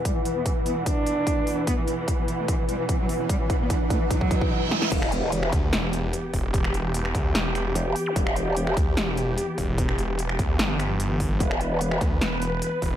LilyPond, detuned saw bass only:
\new Staff \with { instrumentName = "Detuned saw bass" } { \clef bass \time 4/4 \key e \minor \tempo 4 = 148 r1 | r1 | r1 | r4. d,8 e,,4 r8 e,,8~ |
e,,4. d,8 e,,4 r4 | r4. d,8 e,,4 r8 e,,8~ | e,,4. d,8 g,,2 | r4. d,8 e,,4 r8 e,,8 | }